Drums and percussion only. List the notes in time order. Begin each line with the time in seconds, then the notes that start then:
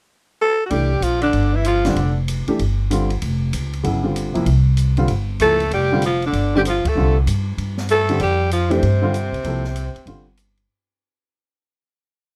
0.70 ride
1.02 hi-hat pedal, ride
1.22 ride
1.33 ride
1.65 hi-hat pedal, ride
1.85 snare, ride
1.96 ride
2.28 hi-hat pedal, ride
2.48 ride
2.59 ride
2.91 hi-hat pedal, ride
3.10 ride
3.22 ride
3.53 hi-hat pedal, ride
3.73 ride
3.84 ride
4.16 hi-hat pedal, ride
4.35 ride
4.46 ride
4.77 hi-hat pedal, ride
4.97 ride
5.08 ride
5.40 hi-hat pedal, ride
5.60 ride
5.71 ride
6.02 hi-hat pedal, ride
6.22 ride
6.33 ride
6.65 hi-hat pedal, ride
6.85 kick, ride
7.27 hi-hat pedal, ride
7.58 ride
7.77 snare
7.89 hi-hat pedal, ride
8.09 ride
8.20 ride
8.51 hi-hat pedal, ride
8.71 ride
8.83 ride
9.14 hi-hat pedal, ride
9.34 ride
9.44 ride
9.64 snare
9.76 hi-hat pedal, ride
9.96 ride
10.07 ride
10.37 hi-hat pedal, ride
10.57 ride